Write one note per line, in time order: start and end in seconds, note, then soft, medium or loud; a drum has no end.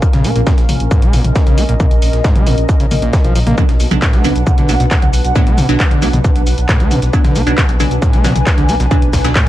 0.00 3.58 C#4 medium
0.00 3.58 A#4 medium
0.00 1.06 F5 medium
0.00 kick loud
0.00 closed hi-hat medium
0.00 shaker medium
0.13 0.21 A#1 medium
0.13 0.26 C#3 medium
0.13 snare medium
0.13 closed hi-hat medium
0.13 mid tom medium
0.24 0.32 A#1 loud
0.24 0.31 A#3 medium
0.24 open hi-hat loud
0.24 shaker medium
0.36 0.43 A#1 medium
0.36 0.42 A#2 medium
0.36 closed hi-hat medium
0.47 0.53 A#2 medium
0.47 kick loud
0.47 snare loud
0.47 closed hi-hat medium
0.47 shaker medium
0.58 0.65 A#1 medium
0.58 snare soft
0.58 closed hi-hat medium
0.69 0.76 A#1 loud
0.69 open hi-hat loud
0.69 mid tom medium
0.69 shaker medium
0.80 0.88 A#1 medium
0.80 closed hi-hat medium
0.91 1.04 G#2 medium
0.91 3.58 D#5 medium
0.91 kick loud
0.91 closed hi-hat medium
0.91 shaker medium
1.02 1.10 A#1 medium
1.02 1.15 G#3 medium
1.02 closed hi-hat medium
1.13 1.21 A#1 loud
1.13 1.23 A#2 loud
1.13 open hi-hat loud
1.13 shaker medium
1.24 1.32 A#1 medium
1.24 closed hi-hat medium
1.24 closed hi-hat soft
1.24 mid tom medium
1.35 kick loud
1.35 snare loud
1.35 closed hi-hat medium
1.35 shaker medium
1.47 1.54 B1 medium
1.47 1.59 C#3 medium
1.47 closed hi-hat medium
1.58 1.65 A#1 loud
1.58 1.64 A#3 medium
1.58 open hi-hat loud
1.58 shaker medium
1.69 1.76 A#1 medium
1.69 1.75 A#2 medium
1.69 closed hi-hat medium
1.80 1.86 A#2 medium
1.80 kick loud
1.80 closed hi-hat medium
1.80 mid tom medium
1.80 shaker medium
1.91 1.99 A#1 medium
1.91 closed hi-hat medium
2.02 2.10 A#1 loud
2.02 open hi-hat loud
2.02 shaker medium
2.13 2.21 A#1 medium
2.13 snare soft
2.13 closed hi-hat medium
2.24 2.37 G#2 medium
2.24 kick loud
2.24 snare loud
2.24 closed hi-hat medium
2.24 shaker medium
2.36 2.43 A#1 medium
2.36 2.48 G#3 medium
2.36 closed hi-hat medium
2.36 mid tom medium
2.47 2.54 A#1 loud
2.47 2.56 A#2 loud
2.47 open hi-hat loud
2.47 shaker medium
2.58 2.65 A#1 medium
2.58 closed hi-hat medium
2.69 kick loud
2.69 closed hi-hat medium
2.69 shaker medium
2.80 2.87 A#1 medium
2.80 2.86 C#3 medium
2.80 closed hi-hat medium
2.91 2.99 A#1 loud
2.91 2.95 A#2 loud
2.91 open hi-hat loud
2.91 mid tom medium
2.91 shaker medium
3.02 3.10 A#1 medium
3.02 3.15 A#2 medium
3.02 closed hi-hat medium
3.13 3.17 A#3 medium
3.13 kick loud
3.13 snare loud
3.13 closed hi-hat medium
3.13 shaker medium
3.24 3.32 B1 medium
3.24 3.34 F3 medium
3.24 closed hi-hat medium
3.35 3.43 A#1 loud
3.35 3.39 F3 medium
3.35 open hi-hat loud
3.35 shaker medium
3.47 3.54 A#1 loud
3.47 3.56 A#3 medium
3.47 snare soft
3.47 closed hi-hat medium
3.47 mid tom medium
3.58 3.64 B2 medium
3.58 3.70 F#3 medium
3.58 3.70 B3 medium
3.58 3.70 D4 medium
3.58 9.49 D4 medium
3.58 kick loud
3.58 closed hi-hat medium
3.58 shaker medium
3.58 shaker soft
3.63 9.49 B4 loud
3.69 3.76 B1 medium
3.69 snare medium
3.69 closed hi-hat medium
3.76 3.87 B1 loud
3.76 7.56 F#5 medium
3.76 open hi-hat loud
3.76 shaker medium
3.91 3.99 B1 medium
3.91 4.03 F#3 medium
3.91 4.03 B3 medium
3.91 4.03 D4 medium
3.91 closed hi-hat medium
3.91 mid tom medium
3.91 shaker soft
4.02 4.15 A2 medium
4.02 kick loud
4.02 snare loud
4.02 clap loud
4.02 closed hi-hat medium
4.02 shaker medium
4.02 shaker soft
4.13 4.21 B1 medium
4.13 4.26 A3 medium
4.13 snare soft
4.13 closed hi-hat medium
4.24 4.32 B1 loud
4.24 4.34 B2 loud
4.24 4.43 F#3 medium
4.24 4.43 B3 medium
4.24 4.43 D4 medium
4.24 open hi-hat loud
4.24 shaker medium
4.36 4.43 B1 medium
4.36 closed hi-hat medium
4.36 shaker soft
4.47 kick loud
4.47 closed hi-hat medium
4.47 mid tom medium
4.47 shaker medium
4.47 shaker soft
4.58 4.65 B1 medium
4.58 4.70 D3 medium
4.58 closed hi-hat medium
4.69 4.76 B1 loud
4.69 4.88 F#3 medium
4.69 4.88 B3 medium
4.69 4.75 B3 medium
4.69 4.88 D4 medium
4.69 open hi-hat loud
4.69 shaker medium
4.80 4.87 B1 medium
4.80 4.86 B2 medium
4.80 closed hi-hat soft
4.80 closed hi-hat medium
4.80 shaker soft
4.91 4.97 B2 medium
4.91 kick loud
4.91 snare loud
4.91 clap loud
4.91 closed hi-hat medium
4.91 shaker medium
4.91 shaker soft
5.02 5.10 C#2 medium
5.02 closed hi-hat medium
5.02 mid tom medium
5.13 5.21 B1 loud
5.13 open hi-hat loud
5.13 shaker medium
5.24 5.32 B1 medium
5.24 closed hi-hat medium
5.24 shaker soft
5.36 5.48 A2 medium
5.36 5.54 F#3 loud
5.36 5.54 B3 medium
5.36 5.54 D4 loud
5.36 kick loud
5.36 closed hi-hat medium
5.36 shaker medium
5.36 shaker soft
5.47 5.54 B1 medium
5.47 5.59 A3 medium
5.47 closed hi-hat medium
5.58 5.65 B1 loud
5.58 5.67 B2 loud
5.58 open hi-hat loud
5.58 mid tom medium
5.58 shaker medium
5.69 5.76 B1 medium
5.69 5.81 F#3 loud
5.69 5.81 B3 medium
5.69 5.81 D4 loud
5.69 snare soft
5.69 closed hi-hat medium
5.69 shaker soft
5.80 kick loud
5.80 snare loud
5.80 clap loud
5.80 closed hi-hat medium
5.80 shaker medium
5.80 shaker soft
5.91 5.99 B1 medium
5.91 6.04 D3 medium
5.91 closed hi-hat medium
6.02 6.10 B1 loud
6.02 6.14 F#3 medium
6.02 6.08 B3 medium
6.02 6.14 B3 medium
6.02 6.14 D4 medium
6.02 open hi-hat loud
6.02 shaker medium
6.13 6.21 B1 medium
6.13 6.19 B2 medium
6.13 closed hi-hat medium
6.13 mid tom medium
6.13 shaker soft
6.24 6.31 B2 medium
6.24 kick loud
6.24 closed hi-hat medium
6.24 shaker soft
6.24 shaker medium
6.36 6.43 B1 medium
6.36 closed hi-hat medium
6.47 6.54 B1 loud
6.47 open hi-hat loud
6.47 shaker medium
6.58 6.65 B1 medium
6.58 closed hi-hat medium
6.58 shaker soft
6.69 6.82 A2 medium
6.69 kick loud
6.69 snare loud
6.69 clap loud
6.69 closed hi-hat medium
6.69 mid tom medium
6.69 shaker medium
6.69 shaker soft
6.80 6.87 C#2 medium
6.80 6.93 A3 medium
6.80 closed hi-hat medium
6.91 6.99 B1 loud
6.91 7.00 B2 loud
6.91 open hi-hat loud
6.91 shaker medium
7.02 7.10 B1 loud
7.02 snare soft
7.02 closed hi-hat medium
7.02 shaker soft
7.13 7.25 F#3 medium
7.13 7.25 B3 medium
7.13 7.25 D4 loud
7.13 kick loud
7.13 closed hi-hat medium
7.13 shaker soft
7.13 shaker medium
7.24 7.32 B1 medium
7.24 7.37 D3 medium
7.24 snare medium
7.24 closed hi-hat medium
7.24 mid tom medium
7.35 7.43 B1 loud
7.35 7.42 B3 medium
7.35 open hi-hat loud
7.35 shaker medium
7.42 9.49 G#5 medium
7.47 7.54 B1 medium
7.47 7.53 B2 medium
7.47 7.58 F#3 medium
7.47 7.58 B3 medium
7.47 7.58 D4 loud
7.47 closed hi-hat medium
7.47 shaker soft
7.58 7.64 B2 medium
7.58 kick loud
7.58 snare loud
7.58 clap loud
7.58 closed hi-hat medium
7.58 shaker medium
7.58 shaker soft
7.69 7.76 B1 medium
7.69 snare soft
7.69 closed hi-hat medium
7.80 7.87 B1 loud
7.80 7.99 F#3 medium
7.80 7.99 B3 medium
7.80 7.99 D4 loud
7.80 open hi-hat loud
7.80 mid tom medium
7.80 shaker medium
7.91 7.99 B1 medium
7.91 closed hi-hat medium
7.91 shaker soft
8.02 8.15 A2 medium
8.02 kick loud
8.02 closed hi-hat medium
8.02 shaker medium
8.02 shaker soft
8.13 8.21 B1 medium
8.13 8.26 A3 medium
8.13 closed hi-hat medium
8.24 8.32 B1 loud
8.24 8.34 B2 loud
8.24 8.43 F#3 medium
8.24 8.43 B3 medium
8.24 8.43 D4 medium
8.24 snare loud
8.24 open hi-hat loud
8.24 shaker medium
8.36 8.43 B1 medium
8.36 closed hi-hat soft
8.36 closed hi-hat medium
8.36 mid tom medium
8.36 shaker soft
8.47 kick loud
8.47 snare loud
8.47 clap loud
8.47 closed hi-hat medium
8.47 shaker soft
8.47 shaker medium
8.58 8.65 C#2 medium
8.58 8.70 D3 medium
8.58 closed hi-hat medium
8.69 8.76 B1 loud
8.69 8.75 B3 medium
8.69 open hi-hat loud
8.69 shaker medium
8.80 8.87 B1 loud
8.80 8.86 B2 medium
8.80 snare medium
8.80 closed hi-hat medium
8.80 shaker soft
8.91 8.97 B2 medium
8.91 9.10 F#3 loud
8.91 9.10 B3 medium
8.91 9.10 D4 loud
8.91 kick loud
8.91 closed hi-hat medium
8.91 mid tom medium
8.91 shaker soft
8.91 shaker medium
9.02 9.10 B1 medium
9.02 closed hi-hat medium
9.13 9.21 B1 loud
9.13 kick medium
9.13 snare loud
9.13 open hi-hat loud
9.13 shaker medium
9.24 9.32 B1 medium
9.24 9.36 F#3 loud
9.24 9.36 B3 medium
9.24 9.36 D4 loud
9.24 snare loud
9.24 closed hi-hat medium
9.24 shaker soft
9.24 shaker medium
9.35 9.48 A2 medium
9.35 kick loud
9.35 snare loud
9.35 clap loud
9.35 closed hi-hat medium
9.35 shaker medium
9.35 shaker soft